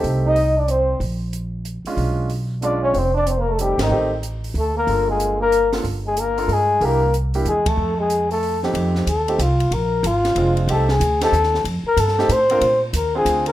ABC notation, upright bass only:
X:1
M:3/4
L:1/8
Q:"Swing" 1/4=186
K:Fmix
V:1 name="Upright bass" clef=bass
C,,6 | B,,,4- B,,, z | =B,,,6 | F,,,4- F,,, _A,,, |
A,,,4 D,,2 | G,,,6 | G,,,4 G,,2 | C,,4 =E,,2 |
F,,6 | F,,2 E,,2 C,,2 | B,,,2 _A,,,2 F,,,2 | C,,2 D,,2 E,,2 |
F,, z G,,2 A,,2 | B,,2 E,,2 D,,2 |]